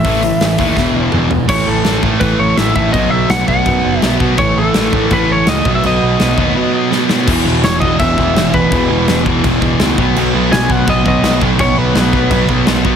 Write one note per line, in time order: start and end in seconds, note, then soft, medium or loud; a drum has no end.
0.00 1.09 E5 medium
0.05 0.31 A1 medium
0.05 0.21 A2 loud
0.05 0.22 E3 loud
0.05 0.22 A3 loud
0.05 kick loud
0.05 open hi-hat medium
0.22 0.39 A2 medium
0.22 0.39 E3 medium
0.22 open hi-hat medium
0.41 0.54 A1 medium
0.41 0.57 A2 medium
0.41 0.57 E3 medium
0.41 snare loud
0.41 open hi-hat medium
0.58 0.72 D#2 medium
0.58 0.76 A2 medium
0.58 0.76 E3 medium
0.58 0.76 A3 loud
0.58 kick medium
0.58 open hi-hat medium
0.77 0.90 E1 medium
0.77 0.94 E2 medium
0.77 0.94 B2 loud
0.77 0.95 E3 loud
0.77 kick medium
0.77 snare medium
0.94 1.07 E1 medium
0.94 1.10 E2 medium
0.94 1.11 B2 medium
0.94 1.12 E3 loud
1.11 1.25 E1 medium
1.11 1.29 E2 medium
1.11 1.30 B2 medium
1.11 1.30 E3 loud
1.11 mid tom medium
1.31 1.44 E1 medium
1.31 1.47 E2 medium
1.31 1.47 B2 medium
1.31 floor tom medium
1.49 1.62 A1 medium
1.49 1.83 A2 loud
1.49 1.84 E3 loud
1.49 1.85 A3 loud
1.49 1.68 C#5 medium
1.49 kick loud
1.49 crash loud
1.49 crash medium
1.67 1.81 A1 medium
1.67 2.01 A4 medium
1.84 1.99 A1 medium
1.84 2.01 A2 medium
1.84 2.02 E3 medium
1.84 2.02 A3 medium
1.84 snare loud
1.84 crash medium
2.02 2.16 A1 medium
2.02 2.19 A2 medium
2.02 2.20 E3 medium
2.02 2.21 A3 loud
2.02 kick medium
2.20 2.34 A1 medium
2.20 2.57 A2 medium
2.20 2.57 E3 loud
2.20 2.58 A3 loud
2.20 2.39 B4 medium
2.20 kick loud
2.20 crash medium
2.39 2.53 A1 medium
2.39 2.57 C#5 medium
2.57 2.71 A1 medium
2.57 2.74 A2 medium
2.57 2.75 E3 medium
2.57 2.76 A3 medium
2.57 2.74 E5 medium
2.57 snare loud
2.57 crash medium
2.75 2.89 A1 medium
2.75 2.93 A2 medium
2.75 2.93 E3 medium
2.75 2.93 A3 medium
2.75 2.92 E5 medium
2.75 kick loud
2.93 3.07 B1 medium
2.93 3.29 B2 loud
2.93 3.30 F#3 loud
2.93 3.30 B3 loud
2.93 3.10 D#5 loud
2.93 kick loud
2.93 crash medium
3.10 3.25 B1 medium
3.10 3.30 E5 loud
3.29 3.43 B1 loud
3.29 3.48 B2 medium
3.29 3.48 F#3 medium
3.29 3.49 B3 medium
3.29 3.47 F#5 medium
3.29 snare loud
3.29 crash medium
3.48 3.61 B1 medium
3.48 3.65 B2 medium
3.48 3.66 F#3 medium
3.48 3.66 B3 medium
3.48 3.99 F#5 loud
3.48 kick medium
3.66 3.79 F#2 medium
3.66 4.01 B2 loud
3.66 4.02 F#3 medium
3.66 4.02 B3 loud
3.66 kick loud
3.66 crash medium
3.84 3.97 F#1 medium
3.99 4.16 B1 medium
3.99 4.18 B2 medium
3.99 4.19 F#3 medium
3.99 4.20 B3 medium
3.99 4.17 E5 loud
3.99 snare loud
3.99 crash medium
4.20 4.37 B2 medium
4.20 4.34 B2 medium
4.20 4.37 F#3 medium
4.20 4.38 B3 medium
4.20 kick loud
4.38 4.52 A1 medium
4.38 4.73 A2 medium
4.38 4.74 E3 loud
4.38 4.74 A3 loud
4.38 4.57 C#5 loud
4.38 kick loud
4.38 crash medium
4.57 4.70 A1 medium
4.57 5.13 A4 medium
4.74 4.88 A1 medium
4.74 4.92 A2 medium
4.74 4.92 E3 medium
4.74 4.93 A3 loud
4.74 snare loud
4.74 crash medium
4.93 5.06 A1 medium
4.93 5.10 A2 medium
4.93 5.10 E3 medium
4.93 5.11 A3 medium
4.93 kick medium
5.10 5.24 A1 medium
5.10 5.46 A2 medium
5.10 5.47 E3 loud
5.10 5.47 A3 loud
5.10 5.32 B4 loud
5.10 kick loud
5.10 crash medium
5.29 5.42 A1 medium
5.29 5.49 C#5 medium
5.47 5.60 C#2 loud
5.47 5.64 A2 medium
5.47 5.64 E3 medium
5.47 5.65 A3 medium
5.47 5.73 D#5 loud
5.47 snare loud
5.47 crash medium
5.64 5.78 B1 medium
5.64 5.81 B2 loud
5.64 5.82 F#3 loud
5.64 5.82 B3 loud
5.64 kick loud
5.75 5.84 E5 medium
5.82 5.97 B1 loud
5.82 6.17 B2 loud
5.82 6.18 F#3 loud
5.82 6.19 B3 loud
5.82 6.89 D#5 medium
5.82 crash medium
6.03 6.15 B1 medium
6.19 6.34 B1 loud
6.19 6.36 B2 medium
6.19 6.36 F#3 medium
6.19 6.37 B3 medium
6.19 snare loud
6.19 crash medium
6.37 6.51 D#2 medium
6.37 6.54 B2 medium
6.37 6.55 F#3 medium
6.37 6.55 B3 loud
6.37 kick medium
6.55 6.89 B2 medium
6.55 6.90 F#3 loud
6.55 6.90 B3 medium
6.91 7.09 B2 medium
6.91 7.09 F#3 medium
6.91 7.10 B3 loud
6.91 snare medium
7.09 7.27 B2 medium
7.09 7.27 F#3 loud
7.09 7.27 B3 medium
7.09 snare loud
7.28 7.44 E1 loud
7.28 7.45 E2 loud
7.28 7.45 B2 loud
7.28 7.46 E3 loud
7.28 kick loud
7.28 crash loud
7.28 crash medium
7.45 7.62 E1 medium
7.45 7.64 E2 medium
7.45 7.63 B2 medium
7.45 7.65 E3 medium
7.63 7.81 E1 loud
7.63 7.80 E2 loud
7.63 7.81 B2 medium
7.63 7.82 E3 loud
7.63 7.80 C#5 medium
7.63 snare loud
7.63 crash medium
7.80 7.99 E1 loud
7.80 7.99 E2 medium
7.80 8.00 B2 medium
7.80 8.00 E3 loud
7.80 7.99 D#5 loud
7.80 kick medium
7.99 8.17 E1 medium
7.99 8.17 E2 loud
7.99 8.18 B2 loud
7.99 8.18 E3 loud
7.99 8.55 E5 loud
7.99 kick loud
7.99 crash medium
8.18 8.35 E1 medium
8.18 8.35 E2 medium
8.18 8.35 B2 loud
8.18 8.36 E3 loud
8.18 kick medium
8.36 8.53 E1 loud
8.36 8.53 E2 medium
8.36 8.53 B2 loud
8.36 8.54 E3 loud
8.36 snare loud
8.36 crash medium
8.54 8.70 E1 medium
8.54 8.70 E2 medium
8.54 8.72 B2 medium
8.54 8.72 E3 medium
8.54 9.22 B4 medium
8.54 kick medium
8.72 8.89 E1 loud
8.72 8.89 E2 medium
8.72 8.90 B2 loud
8.72 8.90 E3 loud
8.72 kick loud
8.72 crash medium
8.90 9.07 E1 medium
8.90 9.07 E2 loud
8.90 9.08 B2 medium
8.90 9.08 E3 loud
9.08 9.41 E1 loud
9.08 9.25 E2 medium
9.08 9.26 B2 loud
9.08 9.26 E3 loud
9.08 snare loud
9.08 crash medium
9.26 9.43 E2 medium
9.26 9.44 B2 medium
9.26 9.45 E3 medium
9.26 kick medium
9.44 9.61 E1 loud
9.44 9.60 E2 loud
9.44 9.60 B2 loud
9.44 9.61 E3 loud
9.44 kick loud
9.44 crash medium
9.61 9.78 E1 medium
9.61 9.78 E2 medium
9.61 9.79 B2 loud
9.61 9.80 E3 medium
9.61 kick loud
9.80 9.96 C#2 loud
9.80 9.97 E2 loud
9.80 9.97 B2 loud
9.80 9.97 E3 loud
9.80 snare loud
9.80 crash medium
9.98 10.15 B1 medium
9.98 10.16 B2 loud
9.98 10.16 F#3 loud
9.98 10.17 B3 loud
9.98 kick loud
10.16 10.33 B1 loud
10.16 10.33 B2 loud
10.16 10.34 F#3 medium
10.16 10.34 B3 loud
10.16 crash medium
10.33 10.51 B1 medium
10.33 10.51 B2 medium
10.33 10.52 F#3 medium
10.33 10.53 B3 loud
10.52 10.69 B1 loud
10.52 10.69 B2 loud
10.52 10.70 F#3 loud
10.52 10.70 B3 loud
10.52 10.71 G#5 loud
10.52 snare loud
10.52 crash medium
10.69 10.86 B1 loud
10.69 10.86 B2 medium
10.69 10.88 F#3 medium
10.69 10.87 B3 medium
10.69 10.88 F#5 loud
10.69 kick medium
10.87 11.04 B1 loud
10.87 11.04 B2 loud
10.87 11.05 F#3 loud
10.87 11.05 B3 loud
10.87 11.07 D#5 loud
10.87 kick loud
10.87 crash medium
11.05 11.22 B1 medium
11.05 11.21 B2 medium
11.05 11.23 F#3 loud
11.05 11.23 B3 loud
11.05 11.40 D#5 medium
11.05 kick loud
11.23 11.40 B1 loud
11.23 11.41 B2 loud
11.23 11.42 F#3 loud
11.23 11.42 B3 loud
11.23 snare loud
11.23 crash medium
11.41 11.58 B1 loud
11.41 11.58 B2 medium
11.41 11.59 F#3 medium
11.41 11.59 B3 loud
11.41 kick loud
11.59 11.76 B1 medium
11.59 11.75 B2 loud
11.59 11.77 F#3 loud
11.59 11.76 B3 loud
11.59 11.78 C#5 medium
11.59 kick loud
11.59 crash medium
11.76 11.94 B1 medium
11.76 11.93 B2 medium
11.76 11.95 F#3 medium
11.76 11.95 B3 loud
11.76 12.49 B4 medium
11.95 12.28 B1 loud
11.95 12.11 B2 medium
11.95 12.12 F#3 loud
11.95 12.12 B3 loud
11.95 snare loud
11.95 crash medium
12.12 12.29 B2 medium
12.12 12.31 F#3 medium
12.12 12.30 B3 loud
12.12 kick medium
12.30 12.48 B1 medium
12.30 12.48 B2 medium
12.30 12.49 F#3 loud
12.30 12.49 B3 loud
12.30 kick loud
12.30 crash medium
12.49 12.66 B1 medium
12.49 12.66 B2 medium
12.49 12.67 F#3 medium
12.49 12.67 B3 loud
12.49 kick medium
12.67 12.96 B1 medium
12.67 12.84 B2 loud
12.67 12.85 F#3 loud
12.67 12.85 B3 loud
12.67 snare loud
12.67 crash medium
12.85 12.96 B2 medium
12.85 12.96 F#3 medium
12.85 12.96 B3 loud
12.85 kick medium